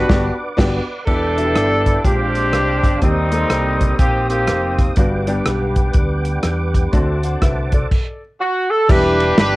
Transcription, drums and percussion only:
0.10 kick, snare
0.58 kick, snare, crash
1.07 kick, crash
1.38 closed hi-hat
1.55 cross-stick, closed hi-hat
1.86 kick, closed hi-hat
2.04 kick, closed hi-hat
2.35 closed hi-hat
2.53 cross-stick, closed hi-hat
2.83 kick, cross-stick, closed hi-hat
3.02 kick, closed hi-hat
3.32 closed hi-hat
3.50 cross-stick, closed hi-hat
3.81 kick, closed hi-hat
3.99 kick, closed hi-hat
4.30 closed hi-hat
4.47 cross-stick, closed hi-hat
4.78 kick, cross-stick, closed hi-hat
4.96 kick, closed hi-hat
5.27 closed hi-hat
5.46 cross-stick, closed hi-hat
5.76 kick, closed hi-hat
5.93 kick, closed hi-hat
6.25 closed hi-hat
6.43 cross-stick, closed hi-hat
6.74 kick, closed hi-hat
6.93 kick, closed hi-hat
7.23 closed hi-hat
7.42 kick, cross-stick, closed hi-hat
7.72 kick, closed hi-hat
7.91 kick, crash
8.89 kick, crash
9.20 ride
9.38 snare, ride

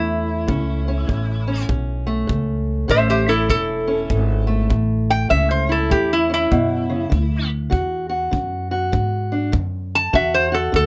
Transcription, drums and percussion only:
0.48 kick
1.09 kick
1.69 kick
2.29 kick
2.90 kick
3.50 kick
4.10 kick
4.70 kick
5.31 kick
5.91 kick
6.52 kick
7.12 kick
7.72 kick
8.33 kick
8.93 kick
9.53 kick
10.14 kick
10.74 kick

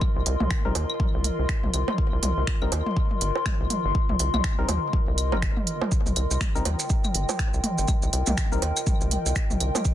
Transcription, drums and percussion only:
0.01 kick, high tom, claves
0.26 closed hi-hat
0.40 mid tom, high tom
0.51 finger snap, kick
0.65 high tom
0.75 closed hi-hat, high bongo
0.90 claves
1.00 kick, high tom
1.24 closed hi-hat, high tom
1.49 finger snap, kick, closed hi-hat
1.63 high tom
1.73 closed hi-hat, claves
1.88 mid tom, high tom, high bongo
1.98 kick
2.23 closed hi-hat, high tom
2.47 finger snap, kick, high tom
2.62 claves
2.72 closed hi-hat, high bongo
2.86 high tom
2.96 kick
3.11 high tom
3.21 closed hi-hat
3.35 high bongo
3.46 finger snap, kick, closed hi-hat, high tom, claves
3.70 closed hi-hat, mid tom, high tom
3.95 kick
4.09 high tom
4.19 closed hi-hat
4.34 mid tom, high tom, claves
4.44 finger snap, kick, closed hi-hat
4.69 closed hi-hat, high tom, high bongo
4.93 kick, high tom
5.18 closed hi-hat, claves
5.32 high tom, high bongo
5.42 finger snap, kick, closed hi-hat
5.57 mid tom, high tom
5.67 closed hi-hat
5.81 mid tom, high bongo
5.92 kick, maracas
6.06 high tom, maracas
6.16 closed hi-hat, claves
6.31 maracas
6.41 finger snap, kick, high tom, maracas
6.56 maracas
6.65 closed hi-hat, high tom, high bongo
6.79 maracas
6.89 kick, maracas
7.04 high tom, claves, maracas
7.15 closed hi-hat
7.29 high tom, high bongo, maracas
7.39 finger snap, kick, closed hi-hat, maracas
7.54 maracas
7.64 closed hi-hat, mid tom, high tom
7.78 maracas
7.88 kick, high tom, claves, maracas
8.02 maracas
8.13 closed hi-hat
8.26 mid tom, high tom, maracas
8.37 finger snap, kick, maracas
8.52 high tom, maracas
8.62 closed hi-hat, high bongo
8.76 claves, maracas
8.86 kick, high tom, maracas
9.01 maracas
9.11 closed hi-hat, high tom
9.26 maracas
9.36 finger snap, kick, closed hi-hat, maracas
9.50 high tom, maracas
9.60 closed hi-hat, claves
9.75 mid tom, high tom, high bongo, maracas
9.85 kick, maracas

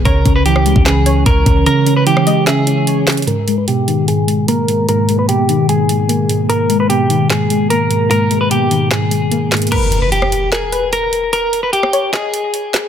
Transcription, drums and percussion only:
0.05 kick, closed hi-hat
0.26 kick, closed hi-hat
0.46 closed hi-hat
0.56 cross-stick
0.66 closed hi-hat
0.76 kick
0.86 snare, clap, closed hi-hat
1.06 closed hi-hat
1.26 kick, closed hi-hat
1.46 kick, closed hi-hat
1.66 closed hi-hat
1.87 closed hi-hat
2.07 closed hi-hat
2.17 cross-stick
2.27 closed hi-hat
2.47 snare, clap, closed hi-hat
2.67 closed hi-hat
2.87 closed hi-hat
3.07 snare, clap, closed hi-hat, open hi-hat
3.12 closed hi-hat
3.17 closed hi-hat
3.22 closed hi-hat
3.27 closed hi-hat
3.48 closed hi-hat
3.68 closed hi-hat
3.88 closed hi-hat
4.08 closed hi-hat
4.28 closed hi-hat
4.48 closed hi-hat
4.68 closed hi-hat
4.89 closed hi-hat
5.09 closed hi-hat
5.29 closed hi-hat
5.49 closed hi-hat
5.69 closed hi-hat
5.89 closed hi-hat
6.09 closed hi-hat
6.30 closed hi-hat
6.50 closed hi-hat
6.70 closed hi-hat
6.90 closed hi-hat
7.10 closed hi-hat
7.30 snare, clap, closed hi-hat
7.50 closed hi-hat
7.70 closed hi-hat
7.91 closed hi-hat
8.11 closed hi-hat
8.31 closed hi-hat
8.51 closed hi-hat
8.71 closed hi-hat
8.91 snare, clap, closed hi-hat
9.11 closed hi-hat
9.32 closed hi-hat
9.52 snare, clap, closed hi-hat
9.57 closed hi-hat
9.62 closed hi-hat
9.67 closed hi-hat
9.72 closed hi-hat, crash
9.92 closed hi-hat
10.12 closed hi-hat
10.22 cross-stick
10.32 closed hi-hat
10.52 snare, clap, closed hi-hat
10.72 closed hi-hat
10.93 closed hi-hat
11.13 closed hi-hat
11.33 closed hi-hat
11.53 closed hi-hat
11.73 closed hi-hat
11.83 cross-stick
11.93 closed hi-hat
12.13 snare, clap, closed hi-hat
12.34 closed hi-hat
12.54 closed hi-hat
12.74 snare, clap, closed hi-hat

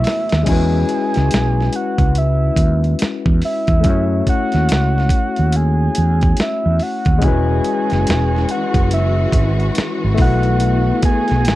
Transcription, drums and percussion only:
0.04 snare, open hi-hat
0.29 snare, closed hi-hat
0.46 kick, closed hi-hat, crash
0.89 closed hi-hat
1.14 snare, closed hi-hat
1.31 snare, closed hi-hat
1.61 snare
1.73 closed hi-hat
1.98 kick, closed hi-hat
2.15 closed hi-hat
2.56 kick, closed hi-hat
2.84 closed hi-hat
2.99 snare, closed hi-hat
3.26 kick
3.42 open hi-hat
3.67 kick, closed hi-hat
3.84 kick, closed hi-hat
4.27 kick, closed hi-hat
4.52 snare, closed hi-hat
4.69 snare, closed hi-hat
4.98 snare
5.09 kick, closed hi-hat
5.36 closed hi-hat
5.52 closed hi-hat
5.95 closed hi-hat
6.21 kick, closed hi-hat
6.37 snare, closed hi-hat
6.79 open hi-hat
7.05 kick, closed hi-hat
7.22 kick, closed hi-hat
7.64 closed hi-hat
7.90 snare, closed hi-hat
8.07 snare, closed hi-hat
8.36 snare
8.49 closed hi-hat
8.74 kick, closed hi-hat
8.91 closed hi-hat
9.32 kick, closed hi-hat
9.60 closed hi-hat
9.75 snare, closed hi-hat
10.18 kick, open hi-hat
10.43 closed hi-hat
10.60 closed hi-hat
11.02 kick, closed hi-hat
11.28 snare, closed hi-hat
11.45 snare, closed hi-hat

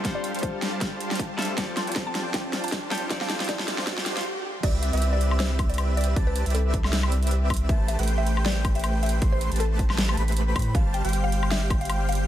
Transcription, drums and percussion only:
0.05 kick, snare, closed hi-hat
0.24 closed hi-hat
0.35 closed hi-hat
0.39 closed hi-hat
0.43 kick, closed hi-hat
0.62 snare, closed hi-hat
0.81 kick, snare, closed hi-hat
1.01 closed hi-hat
1.11 snare, closed hi-hat
1.15 kick, closed hi-hat
1.20 closed hi-hat
1.39 snare, closed hi-hat
1.42 closed hi-hat
1.45 closed hi-hat
1.58 kick, snare, closed hi-hat
1.77 snare, closed hi-hat
1.87 closed hi-hat
1.92 closed hi-hat
1.96 kick, snare, closed hi-hat
2.15 snare, closed hi-hat
2.34 kick, snare, closed hi-hat
2.53 snare, closed hi-hat
2.64 closed hi-hat
2.68 closed hi-hat
2.72 kick, snare, closed hi-hat
2.91 snare, closed hi-hat
2.95 closed hi-hat
2.98 closed hi-hat
3.10 kick, snare, closed hi-hat
3.21 snare
3.29 snare, closed hi-hat
3.40 snare, closed hi-hat
3.44 closed hi-hat
3.49 kick, snare, closed hi-hat
3.59 snare
3.68 snare, closed hi-hat
3.78 snare
3.87 kick, snare, closed hi-hat
3.98 snare
4.06 snare, closed hi-hat
4.17 snare, closed hi-hat
4.21 closed hi-hat
4.63 kick, closed hi-hat, crash
4.83 closed hi-hat
4.93 closed hi-hat
4.97 closed hi-hat
5.02 closed hi-hat
5.21 closed hi-hat
5.31 high woodblock
5.40 snare, closed hi-hat
5.59 kick, closed hi-hat, high woodblock
5.70 closed hi-hat
5.74 closed hi-hat
5.78 closed hi-hat, high woodblock
5.97 closed hi-hat
6.01 closed hi-hat
6.04 closed hi-hat
6.16 kick, closed hi-hat
6.36 closed hi-hat
6.46 closed hi-hat
6.50 closed hi-hat
6.55 closed hi-hat
6.74 kick, closed hi-hat
6.84 snare, high woodblock
6.93 snare, closed hi-hat
7.03 high woodblock
7.12 closed hi-hat
7.23 closed hi-hat
7.27 closed hi-hat
7.31 closed hi-hat
7.50 kick, closed hi-hat, high woodblock
7.54 closed hi-hat
7.57 closed hi-hat
7.69 kick, closed hi-hat
7.88 closed hi-hat
7.99 closed hi-hat
8.03 closed hi-hat
8.08 closed hi-hat
8.27 closed hi-hat
8.37 high woodblock
8.46 snare, closed hi-hat
8.65 kick, closed hi-hat, high woodblock
8.75 closed hi-hat
8.79 closed hi-hat
8.84 closed hi-hat, high woodblock
9.03 closed hi-hat
9.06 closed hi-hat
9.09 closed hi-hat
9.22 kick, closed hi-hat
9.41 closed hi-hat
9.52 closed hi-hat
9.56 closed hi-hat
9.60 closed hi-hat
9.79 kick, closed hi-hat
9.90 snare, high woodblock
9.98 snare, closed hi-hat
10.09 high woodblock
10.17 closed hi-hat
10.28 closed hi-hat
10.32 closed hi-hat
10.37 closed hi-hat
10.56 kick, closed hi-hat, high woodblock
10.59 closed hi-hat
10.62 closed hi-hat
10.75 kick, closed hi-hat
10.94 closed hi-hat
11.05 closed hi-hat
11.09 closed hi-hat
11.13 closed hi-hat
11.32 closed hi-hat
11.43 high woodblock
11.51 snare, closed hi-hat
11.70 kick, closed hi-hat, high woodblock
11.81 closed hi-hat
11.85 closed hi-hat
11.90 closed hi-hat, high woodblock
12.09 closed hi-hat
12.12 closed hi-hat
12.15 closed hi-hat

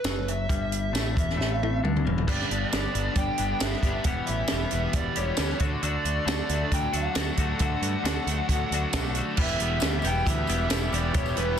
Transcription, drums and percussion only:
0.04 snare, closed hi-hat, tambourine
0.28 closed hi-hat
0.49 kick, closed hi-hat
0.72 closed hi-hat
0.95 snare, closed hi-hat, tambourine
1.17 kick, closed hi-hat
1.30 snare
1.41 snare
1.63 high tom
1.85 mid tom
1.97 mid tom
2.07 floor tom
2.18 floor tom
2.28 kick, crash
2.41 snare
2.51 closed hi-hat
2.73 snare, closed hi-hat, tambourine
2.95 closed hi-hat
3.16 kick, closed hi-hat
3.38 closed hi-hat
3.60 snare, closed hi-hat, tambourine
3.73 snare
3.83 kick, closed hi-hat
4.04 kick, closed hi-hat
4.27 closed hi-hat
4.48 snare, closed hi-hat, tambourine
4.71 closed hi-hat
4.93 kick, closed hi-hat
5.16 closed hi-hat
5.37 snare, closed hi-hat, tambourine
5.49 snare
5.60 kick, closed hi-hat
5.83 closed hi-hat
6.05 closed hi-hat
6.28 snare, closed hi-hat, tambourine
6.49 closed hi-hat
6.72 kick, closed hi-hat
6.93 closed hi-hat
7.15 snare, closed hi-hat, tambourine
7.37 kick, closed hi-hat
7.59 kick, closed hi-hat
7.83 closed hi-hat
8.05 snare, closed hi-hat, tambourine
8.27 closed hi-hat
8.49 kick, closed hi-hat
8.72 closed hi-hat
8.93 kick, snare, closed hi-hat, tambourine
9.05 snare
9.15 closed hi-hat
9.37 kick, crash
9.48 tambourine
9.60 closed hi-hat
9.80 closed hi-hat, tambourine
9.82 snare, tambourine
10.02 closed hi-hat, tambourine
10.15 tambourine
10.26 kick, closed hi-hat, tambourine
10.47 closed hi-hat, tambourine
10.58 tambourine
10.70 snare, closed hi-hat, tambourine
10.93 closed hi-hat, tambourine
11.14 kick, closed hi-hat
11.26 tambourine
11.37 closed hi-hat

